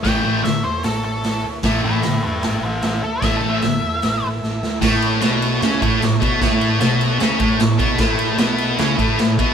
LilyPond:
<<
  \new Staff \with { instrumentName = "Lead electric guitar" } { \time 4/4 \key a \mixolydian \tempo 4 = 151 g''4 e''8 c''8 a'8 a'4 r8 | r8 <a' cis''>8 <a' cis''>8 <g' b'>8 <g' b'>8 <cis' a'>8 <cis' a'>8 a'8 | \tuplet 3/2 { e''8 a'8 e''8~ } e''4. r4. | r1 |
r1 | r1 | }
  \new Staff \with { instrumentName = "Transistor combo organ" } { \time 4/4 \key a \mixolydian <e' a' cis''>1 | <e' a' e''>1~ | <e' a' e''>1 | <e' a' cis''>1~ |
<e' a' cis''>1 | <e' a' b'>1 | }
  \new Staff \with { instrumentName = "Distorted electric guitar" } { \clef bass \time 4/4 \key a \mixolydian <a, e a>8 <a, e a>8 r2. | <a, e a>8 <a, e a>8 r2. | <a, e a>8 <a, e a>8 r2. | <a, a>4 <b, b>4 <cis cis'>8 <a, a>8 a,8 <b, b>8 |
<a, a>4 <b, b>4 <cis cis'>8 <a, a>8 a,8 <b, b>8 | <a, a>4 <b, b>4 <cis cis'>8 <a, a>8 a,8 <b, b>8 | }
  \new Staff \with { instrumentName = "Picked electric bass" } { \clef bass \time 4/4 \key a \mixolydian a,,8 a,,8 a,,8 e,8 a,,8 a,,8 r8 d,8 | a,,8 a,,8 r8 e,8 a,,8 a,,8 r8 d,8 | a,,8 a,,8 a,,8 e,8 a,,8 a,,8 a,,8 d,8 | a,,4 b,,4 cis,8 a,,8 a,,8 r8 |
a,,4 b,,4 cis,8 a,,8 a,,8 b,,8 | a,,4 b,,4 cis,8 a,,8 a,,8 r8 | }
  \new DrumStaff \with { instrumentName = "Drums" } \drummode { \time 4/4 <hho bd sn>4 <hho sn>4 <hho sn>4 <hho sn>4 | <hho bd sn>4 <hho sn>4 <hho sn>4 <hho sn>4 | <hho bd sn>4 <hho sn>4 <hho sn>4 sn8 sn8 | <cymc bd sn>8 cymr8 <cymr sn>8 cymr8 <cymr sn>8 <bd cymr>8 <cymr sn>8 <bd cymr>8 |
<bd cymr sn>8 cymr8 <cymr sn>8 cymr8 <cymr sn>8 <bd cymr>8 <cymr sn>8 <bd cymr>8 | <bd cymr sn>8 cymr8 <cymr sn>8 cymr8 <cymr sn>8 <bd cymr>8 <cymr sn>8 <bd cymr>8 | }
>>